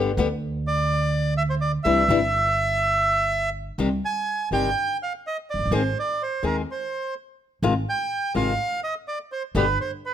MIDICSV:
0, 0, Header, 1, 4, 480
1, 0, Start_track
1, 0, Key_signature, 0, "major"
1, 0, Tempo, 481155
1, 1843, Time_signature, 4, 2, 24, 8
1, 3775, Key_signature, -3, "minor"
1, 10113, End_track
2, 0, Start_track
2, 0, Title_t, "Bandoneon"
2, 0, Program_c, 0, 23
2, 671, Note_on_c, 0, 74, 94
2, 1337, Note_off_c, 0, 74, 0
2, 1371, Note_on_c, 0, 76, 93
2, 1424, Note_off_c, 0, 76, 0
2, 1495, Note_on_c, 0, 72, 79
2, 1546, Note_off_c, 0, 72, 0
2, 1607, Note_on_c, 0, 74, 89
2, 1713, Note_off_c, 0, 74, 0
2, 1833, Note_on_c, 0, 76, 95
2, 3487, Note_off_c, 0, 76, 0
2, 4041, Note_on_c, 0, 80, 86
2, 4481, Note_off_c, 0, 80, 0
2, 4522, Note_on_c, 0, 79, 88
2, 4961, Note_off_c, 0, 79, 0
2, 5017, Note_on_c, 0, 77, 76
2, 5118, Note_off_c, 0, 77, 0
2, 5259, Note_on_c, 0, 75, 79
2, 5359, Note_off_c, 0, 75, 0
2, 5488, Note_on_c, 0, 74, 78
2, 5724, Note_off_c, 0, 74, 0
2, 5729, Note_on_c, 0, 72, 75
2, 5964, Note_off_c, 0, 72, 0
2, 5979, Note_on_c, 0, 74, 78
2, 6209, Note_off_c, 0, 74, 0
2, 6209, Note_on_c, 0, 72, 72
2, 6421, Note_off_c, 0, 72, 0
2, 6444, Note_on_c, 0, 70, 72
2, 6547, Note_off_c, 0, 70, 0
2, 6697, Note_on_c, 0, 72, 68
2, 7127, Note_off_c, 0, 72, 0
2, 7873, Note_on_c, 0, 79, 94
2, 8310, Note_off_c, 0, 79, 0
2, 8342, Note_on_c, 0, 77, 96
2, 8782, Note_off_c, 0, 77, 0
2, 8816, Note_on_c, 0, 75, 82
2, 8922, Note_off_c, 0, 75, 0
2, 9059, Note_on_c, 0, 74, 82
2, 9165, Note_off_c, 0, 74, 0
2, 9299, Note_on_c, 0, 72, 78
2, 9405, Note_off_c, 0, 72, 0
2, 9547, Note_on_c, 0, 71, 81
2, 9762, Note_off_c, 0, 71, 0
2, 9785, Note_on_c, 0, 72, 75
2, 9890, Note_off_c, 0, 72, 0
2, 10034, Note_on_c, 0, 71, 69
2, 10113, Note_off_c, 0, 71, 0
2, 10113, End_track
3, 0, Start_track
3, 0, Title_t, "Nylon-string guitar"
3, 0, Program_c, 1, 24
3, 0, Note_on_c, 1, 50, 68
3, 0, Note_on_c, 1, 55, 72
3, 0, Note_on_c, 1, 59, 76
3, 0, Note_on_c, 1, 67, 75
3, 101, Note_off_c, 1, 50, 0
3, 104, Note_off_c, 1, 55, 0
3, 106, Note_off_c, 1, 59, 0
3, 109, Note_off_c, 1, 67, 0
3, 181, Note_on_c, 1, 50, 80
3, 186, Note_on_c, 1, 55, 82
3, 189, Note_on_c, 1, 59, 83
3, 197, Note_on_c, 1, 67, 85
3, 264, Note_off_c, 1, 50, 0
3, 266, Note_off_c, 1, 55, 0
3, 268, Note_off_c, 1, 59, 0
3, 272, Note_off_c, 1, 67, 0
3, 1846, Note_on_c, 1, 48, 64
3, 1848, Note_on_c, 1, 55, 66
3, 1851, Note_on_c, 1, 52, 66
3, 1855, Note_on_c, 1, 62, 73
3, 1860, Note_on_c, 1, 64, 77
3, 2012, Note_off_c, 1, 48, 0
3, 2013, Note_off_c, 1, 55, 0
3, 2015, Note_off_c, 1, 52, 0
3, 2017, Note_off_c, 1, 62, 0
3, 2019, Note_off_c, 1, 64, 0
3, 2088, Note_on_c, 1, 48, 76
3, 2098, Note_on_c, 1, 52, 86
3, 2098, Note_on_c, 1, 55, 91
3, 2102, Note_on_c, 1, 62, 91
3, 2103, Note_on_c, 1, 64, 90
3, 2174, Note_off_c, 1, 48, 0
3, 2179, Note_off_c, 1, 52, 0
3, 2179, Note_off_c, 1, 55, 0
3, 2181, Note_off_c, 1, 62, 0
3, 2182, Note_off_c, 1, 64, 0
3, 3776, Note_on_c, 1, 48, 72
3, 3777, Note_on_c, 1, 51, 75
3, 3783, Note_on_c, 1, 60, 79
3, 3785, Note_on_c, 1, 55, 77
3, 3789, Note_on_c, 1, 67, 84
3, 3866, Note_off_c, 1, 48, 0
3, 3866, Note_off_c, 1, 51, 0
3, 3869, Note_off_c, 1, 60, 0
3, 3870, Note_off_c, 1, 55, 0
3, 3872, Note_off_c, 1, 67, 0
3, 4505, Note_on_c, 1, 48, 45
3, 4510, Note_on_c, 1, 51, 50
3, 4516, Note_on_c, 1, 55, 56
3, 4516, Note_on_c, 1, 60, 52
3, 4518, Note_on_c, 1, 67, 59
3, 4673, Note_off_c, 1, 48, 0
3, 4675, Note_off_c, 1, 51, 0
3, 4678, Note_off_c, 1, 55, 0
3, 4678, Note_off_c, 1, 60, 0
3, 4680, Note_off_c, 1, 67, 0
3, 5705, Note_on_c, 1, 51, 81
3, 5706, Note_on_c, 1, 56, 79
3, 5709, Note_on_c, 1, 60, 79
3, 5713, Note_on_c, 1, 68, 87
3, 5794, Note_off_c, 1, 51, 0
3, 5795, Note_off_c, 1, 56, 0
3, 5797, Note_off_c, 1, 60, 0
3, 5798, Note_off_c, 1, 68, 0
3, 6414, Note_on_c, 1, 51, 54
3, 6419, Note_on_c, 1, 56, 54
3, 6424, Note_on_c, 1, 60, 57
3, 6429, Note_on_c, 1, 68, 61
3, 6587, Note_off_c, 1, 51, 0
3, 6590, Note_off_c, 1, 56, 0
3, 6593, Note_off_c, 1, 60, 0
3, 6595, Note_off_c, 1, 68, 0
3, 7612, Note_on_c, 1, 48, 73
3, 7615, Note_on_c, 1, 51, 77
3, 7616, Note_on_c, 1, 56, 83
3, 7619, Note_on_c, 1, 60, 86
3, 7620, Note_on_c, 1, 65, 90
3, 7705, Note_off_c, 1, 48, 0
3, 7706, Note_off_c, 1, 51, 0
3, 7707, Note_off_c, 1, 56, 0
3, 7708, Note_off_c, 1, 60, 0
3, 7709, Note_off_c, 1, 65, 0
3, 8324, Note_on_c, 1, 48, 55
3, 8328, Note_on_c, 1, 56, 59
3, 8331, Note_on_c, 1, 51, 54
3, 8335, Note_on_c, 1, 60, 58
3, 8339, Note_on_c, 1, 65, 58
3, 8497, Note_off_c, 1, 48, 0
3, 8500, Note_off_c, 1, 56, 0
3, 8501, Note_off_c, 1, 51, 0
3, 8503, Note_off_c, 1, 60, 0
3, 8505, Note_off_c, 1, 65, 0
3, 9528, Note_on_c, 1, 47, 79
3, 9533, Note_on_c, 1, 55, 89
3, 9534, Note_on_c, 1, 50, 77
3, 9541, Note_on_c, 1, 59, 80
3, 9543, Note_on_c, 1, 67, 82
3, 9618, Note_off_c, 1, 47, 0
3, 9621, Note_off_c, 1, 50, 0
3, 9621, Note_off_c, 1, 55, 0
3, 9625, Note_off_c, 1, 59, 0
3, 9626, Note_off_c, 1, 67, 0
3, 10113, End_track
4, 0, Start_track
4, 0, Title_t, "Upright bass"
4, 0, Program_c, 2, 32
4, 0, Note_on_c, 2, 31, 63
4, 133, Note_off_c, 2, 31, 0
4, 172, Note_on_c, 2, 38, 93
4, 1761, Note_off_c, 2, 38, 0
4, 1844, Note_on_c, 2, 36, 64
4, 2044, Note_off_c, 2, 36, 0
4, 2079, Note_on_c, 2, 31, 89
4, 3688, Note_off_c, 2, 31, 0
4, 3772, Note_on_c, 2, 36, 79
4, 3977, Note_off_c, 2, 36, 0
4, 4498, Note_on_c, 2, 31, 57
4, 4703, Note_off_c, 2, 31, 0
4, 5526, Note_on_c, 2, 29, 47
4, 5571, Note_off_c, 2, 29, 0
4, 5577, Note_on_c, 2, 30, 54
4, 5635, Note_off_c, 2, 30, 0
4, 5641, Note_on_c, 2, 31, 65
4, 5691, Note_off_c, 2, 31, 0
4, 5697, Note_on_c, 2, 32, 87
4, 5903, Note_off_c, 2, 32, 0
4, 6412, Note_on_c, 2, 39, 56
4, 6620, Note_off_c, 2, 39, 0
4, 7606, Note_on_c, 2, 32, 92
4, 7813, Note_off_c, 2, 32, 0
4, 8327, Note_on_c, 2, 32, 62
4, 8532, Note_off_c, 2, 32, 0
4, 9523, Note_on_c, 2, 31, 86
4, 9728, Note_off_c, 2, 31, 0
4, 10113, End_track
0, 0, End_of_file